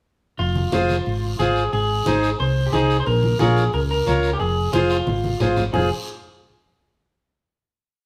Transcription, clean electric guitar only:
0.39 1.36 F4 medium
1.39 1.71 G#4 medium
1.73 2.36 G#4 medium
2.40 2.67 C5 medium
2.66 2.73 G4 medium
2.73 2.98 G#4 medium
3.00 3.06 C5 medium
3.07 3.40 A#4 loud
3.40 3.71 G#4 medium
3.74 3.79 A#4 medium
3.91 4.33 A#4 medium
4.33 4.39 G4 medium
4.40 4.73 G#4 loud
4.73 4.89 F4 medium
4.91 5.53 F4 medium
5.74 5.89 G#4 medium

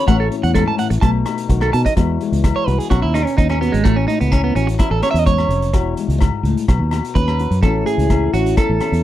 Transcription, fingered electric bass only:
0.08 0.28 A1 medium
0.44 0.64 E2 medium
0.91 1.01 A1 medium
1.02 1.23 B1 loud
1.49 1.70 B1 medium
1.74 1.84 B2 medium
1.97 2.17 E2 medium
2.32 2.53 C#2 medium
2.68 2.78 C2 medium
2.91 3.01 B1 loud
3.04 3.24 D#2 medium
3.38 3.69 D#2 medium
3.74 3.84 G#1 medium
3.85 4.05 A1 medium
4.21 4.51 C#2 medium
4.55 4.76 A1 medium
4.91 5.01 A1 medium
5.14 5.45 E2 medium
5.49 5.73 F1 loud
5.73 5.94 E1 medium
6.08 6.29 C#2 medium
6.43 6.54 C#2 medium
6.68 6.78 B1 loud
6.79 7.00 D#2 medium
7.15 7.46 D#2 medium
7.51 7.61 F#2 medium
7.62 7.83 A1 medium
7.98 8.28 C#2 medium
8.33 8.54 A1 medium
8.69 8.79 A1 medium
8.92 9.03 E2 medium

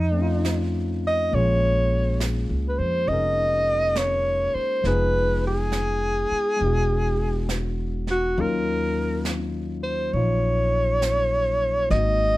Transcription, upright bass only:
0.00 1.29 F2 medium
1.33 2.46 A#1 medium
2.50 2.77 C#2 medium
2.79 3.06 F2 medium
3.08 4.50 F1 medium
4.54 muted upright bass stroke soft
4.84 6.26 F1 medium
6.31 muted upright bass stroke soft
6.61 8.33 E1 medium
8.38 10.10 D#2 medium
10.13 11.86 A#1 medium
11.90 12.37 G#1 medium

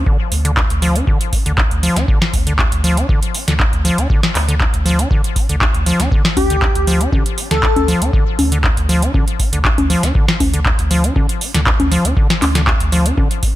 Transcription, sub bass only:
0.32 0.64 D2 loud
0.70 1.01 D2 loud
1.07 1.17 A1 medium
1.46 1.63 D2 medium
1.71 1.88 D2 medium
1.96 2.05 D2 medium
2.33 2.65 D2 loud
2.72 3.03 D2 loud
3.09 3.18 A1 medium
3.48 3.65 D2 medium
3.73 3.90 D2 medium
3.98 4.06 D2 medium
4.35 4.67 D2 loud
4.74 5.05 D2 loud
5.11 5.20 A1 medium
5.49 5.66 D2 medium
5.75 5.92 D2 medium
6.00 6.08 D2 medium
6.37 6.69 D2 loud
6.75 7.07 D2 loud
7.12 7.22 A1 medium
7.51 7.68 D2 medium
7.76 7.93 D2 medium
8.01 8.10 D2 medium
8.39 8.71 D2 loud
8.77 9.08 D2 loud
9.14 9.23 A1 medium
9.53 9.70 D2 medium
9.78 9.95 D2 medium
10.03 10.11 D2 medium
10.40 10.72 D2 loud
10.79 11.10 D2 loud
11.16 11.25 A1 medium
11.55 11.71 D2 medium
11.80 11.97 D2 medium
12.05 12.13 D2 medium
12.42 12.74 D2 loud
12.81 13.12 D2 loud
13.18 13.27 A1 medium

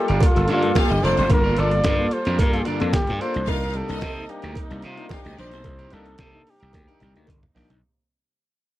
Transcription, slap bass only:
0.09 0.19 G1 medium
0.37 0.46 G1 loud
0.50 0.71 G2 loud
0.91 1.01 G1 loud
1.04 1.15 F1 loud
1.18 1.28 F#1 medium
1.31 1.52 G1 loud
1.59 1.80 G1 loud
1.85 2.06 G2 loud
2.27 2.37 F2 loud
2.40 2.61 G2 medium
2.81 2.91 F2 loud
2.94 muted slap bass stroke soft
3.09 3.19 G2 loud
3.36 3.46 C2 medium
3.48 3.81 C2 loud
3.89 4.00 C2 loud
4.02 4.24 C3 loud
4.43 4.54 D2 medium
4.71 4.81 C2 loud
4.84 5.06 C3 loud
5.26 5.36 D2 loud
5.38 5.53 A#1 loud
5.53 5.65 B1 medium
5.65 5.87 C2 loud
5.93 6.14 C2 loud
6.19 6.41 C3 loud
6.62 6.72 C2 medium
6.74 6.86 D2 loud
7.02 7.13 C2 medium
7.16 7.26 D2 medium
7.28 7.40 G1 loud
7.56 7.68 A#1 medium
7.70 7.80 B1 medium

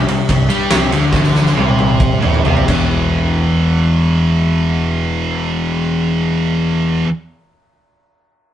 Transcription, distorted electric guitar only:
0.09 0.25 C3 medium
0.30 0.46 C3 medium
0.49 0.70 G3 loud
0.70 0.91 C3 loud
0.91 1.10 D3 loud
1.11 1.54 D3 loud
1.54 2.20 C3 loud
2.20 2.43 A2 loud
2.44 2.67 C3 loud
2.65 7.04 E2 loud
2.65 7.06 B2 loud
2.69 7.08 E3 loud

